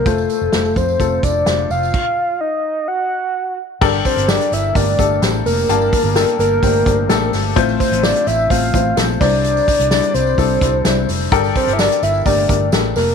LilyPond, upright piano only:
<<
  \new Staff \with { instrumentName = "Upright piano" } { \time 4/4 \key f \mixolydian \tempo 4 = 128 <a f' c''>8 r8 <a f' c''>8 r8 <a f' a'>8 r8 <a f' c''>8 r8 | r1 | \key g \dorian <d' g' a' bes'>8 r8 <d' g' a' bes'>8 r8 <a d' g' bes'>8 <a d' g' a'>8 <a d' g' c''>8 r8 | <bes d' g' a''>8 r8 <d' g' a' bes'>8 r8 <a d' g' c''>8 <a d' g' c''>8 <a d' g' a'>8 r8 |
<a c' f' c''>8 r8 <a c' f' c''>8 r8 <a c' f' c''>8 <a c' f' c''>8 <a c' f' a'>8 <g d' e' c''>8~ | <g d' e' c''>8 r8 <g d' e' d''>8 r8 <g d' e' a'>8 <g d' e' c''>8 <g d' e' c''>8 r8 | <d' g' a' bes'>8 r8 <d' g' a' bes'>8 r8 <a d' g' bes'>8 <a d' g' bes'>8 <d' g' a' bes'>8 r8 | }
  \new Staff \with { instrumentName = "Upright piano" } { \clef bass \time 4/4 \key f \mixolydian r1 | r1 | \key g \dorian g,4. r2 r8 | g,4. r2 r8 |
a,4. r2 c8~ | c4 r2. | g,4. r2 r8 | }
>>